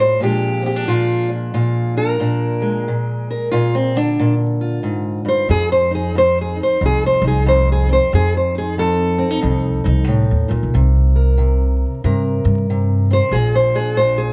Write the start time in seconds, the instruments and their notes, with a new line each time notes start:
Already playing: steel-string acoustic guitar A2 F4
0.00 steel-string acoustic guitar C5
0.20 steel-string acoustic guitar A#2 F3 G#3 D4 G4
0.62 steel-string acoustic guitar C4
0.66 steel-string acoustic guitar G4
0.76 steel-string acoustic guitar D4
0.88 steel-string acoustic guitar A#2 F4
1.29 steel-string acoustic guitar D4
1.54 steel-string acoustic guitar A#2 F4
1.97 steel-string acoustic guitar D4 A#4
2.20 steel-string acoustic guitar A#2 D4
2.62 steel-string acoustic guitar G#3
2.88 steel-string acoustic guitar A#2
3.31 steel-string acoustic guitar A#4
3.52 steel-string acoustic guitar A#2 F4
3.75 steel-string acoustic guitar C4
3.96 steel-string acoustic guitar D3 D4
4.20 steel-string acoustic guitar A#2
4.61 steel-string acoustic guitar F4
4.83 steel-string acoustic guitar G#2
5.25 steel-string acoustic guitar G2 C5
5.49 upright bass F2, steel-string acoustic guitar F2 G#4
5.72 steel-string acoustic guitar C5
5.91 steel-string acoustic guitar D#4 G#4
6.15 steel-string acoustic guitar F2 C5
6.41 steel-string acoustic guitar G#4
6.56 steel-string acoustic guitar D#4
6.63 steel-string acoustic guitar C5
6.81 upright bass C2, steel-string acoustic guitar F2
6.86 steel-string acoustic guitar G#4
7.06 steel-string acoustic guitar C5
7.22 upright bass C2, steel-string acoustic guitar D#4
7.28 steel-string acoustic guitar G#4
7.46 steel-string acoustic guitar F2 C5
7.72 steel-string acoustic guitar G#4
7.89 steel-string acoustic guitar C4 C5
8.13 upright bass F2, steel-string acoustic guitar F2 G#4
8.37 steel-string acoustic guitar C5
8.55 steel-string acoustic guitar D#4 G#4
8.78 steel-string acoustic guitar F2 A4
9.18 steel-string acoustic guitar C4
9.31 steel-string acoustic guitar D#4
9.42 upright bass C2, steel-string acoustic guitar F2 D#4
9.84 upright bass C2, steel-string acoustic guitar D#4
10.07 steel-string acoustic guitar A2
10.31 upright bass D#2
10.48 upright bass D2, steel-string acoustic guitar A#2
10.63 upright bass C2
10.74 upright bass C2, steel-string acoustic guitar C3
11.16 steel-string acoustic guitar A#4
11.38 steel-string acoustic guitar C3
12.04 upright bass G2, steel-string acoustic guitar C3 A#4
12.45 upright bass G2
12.70 steel-string acoustic guitar C3
13.11 steel-string acoustic guitar C4 C5
13.31 upright bass A#1, steel-string acoustic guitar A#2 G#4
13.55 steel-string acoustic guitar C5
13.75 steel-string acoustic guitar D4 G#4
13.97 steel-string acoustic guitar A#2 C5
14.18 steel-string acoustic guitar G#4